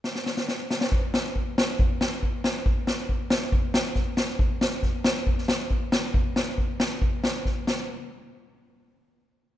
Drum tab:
SD |ooooo-oo|--o---o-|--o---o-|--o---o-|
BD |--------|o---o---|o---o---|o---o---|

SD |--o-o-o-|--o-o-o-|-oo---o-|--o---o-|
BD |o---o---|o---o---|o---o---|o---o---|

SD |--o-o-o-|--------|--------|
BD |o---o---|--------|--------|